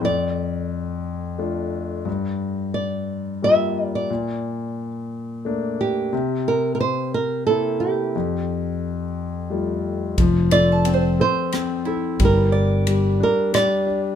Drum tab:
RD |------|------|------|------|
SD |------|------|------|------|
BD |------|------|------|------|

RD |------|xxx-x-|x-x-x-|
SD |------|----r-|----r-|
BD |------|o-----|o-----|